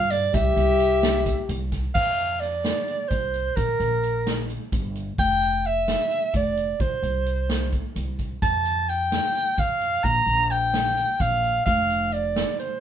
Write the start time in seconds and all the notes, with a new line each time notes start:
Already playing: G2 F5
0.11 D5, snare, closed hi-hat
0.34 C2 G4 E5, kick, closed hi-hat, shaker
0.57 C2, closed hi-hat, shaker
0.80 closed hi-hat, shaker
1.03 snare, closed hi-hat, shaker
1.26 kick, closed hi-hat, shaker
1.49 C2, closed hi-hat
1.72 kick, snare, closed hi-hat
1.94 F2 F5, kick, crash
2.18 closed hi-hat
2.40 D5, snare, closed hi-hat
2.64 snare, closed hi-hat
2.88 closed hi-hat
3.09 C2 C5, kick, closed hi-hat
3.34 closed hi-hat
3.56 A#1 A#4, kick, closed hi-hat
3.80 A#1, closed hi-hat
4.03 closed hi-hat
4.27 snare, closed hi-hat
4.50 closed hi-hat
4.72 G1, kick, closed hi-hat
4.95 closed hi-hat
5.18 F1 G5, kick, closed hi-hat
5.41 closed hi-hat
5.65 E5, closed hi-hat
5.88 snare, closed hi-hat
6.11 closed hi-hat
6.34 F1 D5, kick, closed hi-hat
6.57 closed hi-hat
6.80 C2 C5, kick, closed hi-hat
7.03 C2, closed hi-hat
7.26 closed hi-hat
7.49 snare, closed hi-hat
7.72 kick, closed hi-hat
7.96 C2, closed hi-hat
8.19 kick, closed hi-hat
8.42 F2 A5, kick, closed hi-hat
8.65 closed hi-hat
8.89 G5, closed hi-hat
9.12 snare, closed hi-hat
9.35 closed hi-hat
9.58 F2 F5, kick, closed hi-hat
9.81 closed hi-hat
10.04 A#1 A#5, kick, closed hi-hat
10.26 A#1, closed hi-hat
10.51 G5, closed hi-hat
10.74 snare, closed hi-hat
10.97 closed hi-hat
11.20 A#1 F5, kick, closed hi-hat
11.44 closed hi-hat
11.66 F1 F5, kick, closed hi-hat
11.90 closed hi-hat
12.13 D5, closed hi-hat
12.36 snare, closed hi-hat
12.59 C5, closed hi-hat